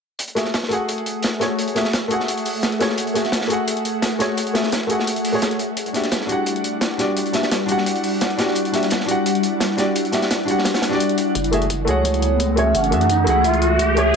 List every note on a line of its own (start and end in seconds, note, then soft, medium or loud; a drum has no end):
0.19 5.56 A3 medium
0.19 5.56 G#4 medium
0.19 5.56 E5 medium
0.19 5.56 F#5 medium
0.19 closed hi-hat medium
0.27 closed hi-hat soft
0.35 0.47 A3 medium
0.35 0.48 F#4 medium
0.35 0.48 G#4 medium
0.35 0.49 E5 medium
0.35 snare soft
0.35 closed hi-hat medium
0.45 snare soft
0.45 closed hi-hat soft
0.54 snare loud
0.54 closed hi-hat medium
0.63 snare soft
0.69 1.38 A3 medium
0.69 1.39 F#4 medium
0.69 1.40 G#4 medium
0.69 closed hi-hat medium
0.74 1.40 F#5 medium
0.89 closed hi-hat medium
0.98 closed hi-hat soft
1.06 closed hi-hat medium
1.22 snare loud
1.22 closed hi-hat medium
1.40 1.73 A3 medium
1.40 1.74 F#4 medium
1.40 1.74 G#4 medium
1.40 1.75 C#5 medium
1.40 snare soft
1.40 closed hi-hat medium
1.59 closed hi-hat medium
1.68 closed hi-hat soft
1.75 1.87 A3 medium
1.75 1.87 F#4 medium
1.75 1.88 G#4 medium
1.75 1.88 E5 medium
1.75 snare medium
1.75 closed hi-hat medium
1.85 snare soft
1.85 closed hi-hat soft
1.93 snare loud
1.93 closed hi-hat medium
2.08 2.77 A3 medium
2.08 2.78 F#4 medium
2.08 2.79 G#4 medium
2.08 closed hi-hat medium
2.14 2.80 F#5 medium
2.20 snare soft
2.28 closed hi-hat medium
2.37 closed hi-hat soft
2.45 closed hi-hat medium
2.45 open hi-hat medium
2.63 snare loud
2.63 closed hi-hat medium
2.72 closed hi-hat soft
2.79 3.13 A3 medium
2.79 3.13 F#4 medium
2.79 3.14 G#4 medium
2.79 3.14 C#5 medium
2.79 snare medium
2.79 closed hi-hat medium
2.89 snare soft
2.98 closed hi-hat medium
3.07 closed hi-hat soft
3.14 3.26 A3 medium
3.14 3.27 F#4 medium
3.14 3.27 G#4 medium
3.14 3.28 E5 medium
3.14 snare soft
3.14 closed hi-hat medium
3.25 snare soft
3.25 closed hi-hat soft
3.32 snare loud
3.32 closed hi-hat medium
3.41 snare medium
3.48 4.17 A3 medium
3.48 4.18 F#4 medium
3.48 4.19 G#4 medium
3.48 closed hi-hat medium
3.53 4.19 F#5 medium
3.67 closed hi-hat medium
3.77 closed hi-hat soft
3.85 closed hi-hat medium
4.02 snare loud
4.02 closed hi-hat medium
4.19 4.52 A3 medium
4.19 4.53 F#4 medium
4.19 4.53 G#4 medium
4.19 4.54 C#5 medium
4.19 snare soft
4.19 closed hi-hat medium
4.37 closed hi-hat medium
4.46 closed hi-hat soft
4.53 4.66 A3 medium
4.53 4.66 F#4 medium
4.53 4.67 G#4 medium
4.53 4.67 E5 medium
4.53 snare medium
4.53 closed hi-hat medium
4.64 snare soft
4.64 closed hi-hat soft
4.72 snare loud
4.72 closed hi-hat medium
4.87 5.31 A3 medium
4.87 5.32 F#4 medium
4.87 5.32 G#4 medium
4.87 closed hi-hat medium
4.93 5.33 F#5 medium
5.00 snare soft
5.07 closed hi-hat medium
5.16 closed hi-hat soft
5.24 closed hi-hat medium
5.24 open hi-hat medium
5.32 5.58 A3 medium
5.32 5.58 F#4 medium
5.32 5.59 G#4 medium
5.32 5.59 C#5 medium
5.42 snare loud
5.42 closed hi-hat medium
5.51 closed hi-hat soft
5.59 11.31 G3 medium
5.59 11.31 E4 medium
5.59 11.31 D5 medium
5.59 11.31 F#5 medium
5.59 closed hi-hat medium
5.77 closed hi-hat medium
5.86 closed hi-hat soft
5.93 6.05 D4 medium
5.93 6.06 F#4 medium
5.93 6.06 G4 medium
5.93 6.07 E5 medium
5.93 snare soft
5.93 closed hi-hat medium
6.04 snare soft
6.04 closed hi-hat soft
6.12 snare loud
6.12 closed hi-hat medium
6.21 snare soft
6.26 6.96 D4 medium
6.26 6.97 F#4 medium
6.26 6.98 G4 medium
6.26 closed hi-hat medium
6.32 6.98 F#5 medium
6.46 closed hi-hat medium
6.56 closed hi-hat soft
6.64 closed hi-hat medium
6.81 snare loud
6.81 closed hi-hat medium
6.98 7.31 D4 medium
6.98 7.32 F#4 medium
6.98 7.32 G4 medium
6.98 7.33 D5 medium
6.98 snare soft
6.98 closed hi-hat medium
7.17 closed hi-hat medium
7.26 closed hi-hat soft
7.33 7.45 D4 medium
7.33 7.45 F#4 medium
7.33 7.46 G4 medium
7.33 7.46 E5 medium
7.33 snare medium
7.33 closed hi-hat medium
7.43 snare medium
7.43 closed hi-hat soft
7.51 snare loud
7.51 closed hi-hat medium
7.66 8.35 D4 medium
7.66 8.36 F#4 medium
7.66 8.37 G4 medium
7.66 closed hi-hat medium
7.72 8.38 F#5 medium
7.78 snare soft
7.86 closed hi-hat medium
7.95 closed hi-hat soft
8.03 closed hi-hat medium
8.03 open hi-hat medium
8.21 snare loud
8.21 closed hi-hat medium
8.30 closed hi-hat soft
8.37 8.71 D4 medium
8.37 8.71 F#4 medium
8.37 8.72 G4 medium
8.37 8.72 D5 medium
8.37 snare medium
8.37 closed hi-hat medium
8.48 snare soft
8.55 closed hi-hat medium
8.65 closed hi-hat soft
8.72 8.84 D4 medium
8.72 8.85 F#4 medium
8.72 8.85 G4 medium
8.72 8.86 E5 medium
8.72 snare soft
8.72 closed hi-hat medium
8.83 snare soft
8.83 closed hi-hat soft
8.90 snare loud
8.90 closed hi-hat medium
9.00 snare medium
9.06 9.75 D4 medium
9.06 9.76 F#4 medium
9.06 9.77 G4 medium
9.06 closed hi-hat medium
9.11 9.78 F#5 medium
9.26 closed hi-hat medium
9.35 closed hi-hat soft
9.43 closed hi-hat medium
9.60 snare loud
9.60 closed hi-hat medium
9.77 10.10 D4 medium
9.77 10.11 F#4 medium
9.77 10.11 G4 medium
9.77 10.12 D5 medium
9.77 snare soft
9.77 closed hi-hat medium
9.96 closed hi-hat medium
10.05 closed hi-hat soft
10.12 10.24 D4 medium
10.12 10.24 F#4 medium
10.12 10.25 G4 medium
10.12 10.25 E5 medium
10.12 snare medium
10.12 closed hi-hat medium
10.22 snare soft
10.22 closed hi-hat soft
10.31 snare loud
10.31 closed hi-hat medium
10.45 10.88 D4 medium
10.45 10.90 F#4 medium
10.45 10.91 G4 medium
10.45 closed hi-hat medium
10.51 10.92 F#5 medium
10.58 snare soft
10.65 snare medium
10.65 closed hi-hat medium
10.74 snare medium
10.74 closed hi-hat medium
10.74 closed hi-hat soft
10.82 snare loud
10.82 closed hi-hat medium
10.89 11.33 D4 medium
10.89 11.34 F#4 medium
10.89 11.35 G4 medium
10.89 snare soft
10.95 11.36 D5 medium
11.00 closed hi-hat medium
11.09 closed hi-hat soft
11.18 closed hi-hat medium
11.35 11.86 F#1 loud
11.35 14.16 E3 medium
11.35 14.16 A3 medium
11.35 14.16 G#4 medium
11.35 kick loud
11.35 closed hi-hat medium
11.35 riser medium
11.44 closed hi-hat soft
11.51 11.63 A3 medium
11.51 11.64 F#4 medium
11.51 11.64 G#4 medium
11.51 11.65 E5 medium
11.51 closed hi-hat medium
11.62 closed hi-hat soft
11.70 kick medium
11.70 closed hi-hat medium
11.85 12.73 C#2 medium
11.85 12.54 A3 medium
11.85 12.55 F#4 medium
11.85 12.56 G#4 medium
11.85 12.60 C#5 medium
11.85 closed hi-hat medium
11.90 12.57 F#5 medium
12.05 kick medium
12.05 closed hi-hat medium
12.14 closed hi-hat soft
12.22 closed hi-hat medium
12.40 kick medium
12.40 closed hi-hat medium
12.56 12.89 A3 medium
12.56 12.90 F#4 medium
12.56 12.90 G#4 medium
12.56 12.91 C#5 medium
12.56 12.75 E5 loud
12.56 closed hi-hat medium
12.75 12.94 F#1 medium
12.75 13.26 F#5 loud
12.75 kick medium
12.75 closed hi-hat medium
12.84 closed hi-hat soft
12.91 13.26 F#2 medium
12.91 13.03 A3 medium
12.91 13.03 F#4 medium
12.91 13.04 G#4 medium
12.91 13.04 E5 medium
12.91 closed hi-hat medium
13.01 closed hi-hat soft
13.10 kick medium
13.10 closed hi-hat medium
13.24 14.13 C#2 medium
13.24 13.93 A3 medium
13.24 13.94 F#4 medium
13.24 13.95 G#4 medium
13.24 13.43 F#5 loud
13.24 closed hi-hat medium
13.30 13.96 F#5 medium
13.44 13.93 E5 loud
13.44 kick medium
13.44 closed hi-hat medium
13.54 closed hi-hat soft
13.62 closed hi-hat medium
13.79 kick medium
13.79 closed hi-hat medium
13.95 14.16 A3 medium
13.95 14.16 F#4 medium
13.95 14.16 G#4 medium
13.95 14.16 C#5 medium
13.95 14.04 E5 medium
13.95 closed hi-hat medium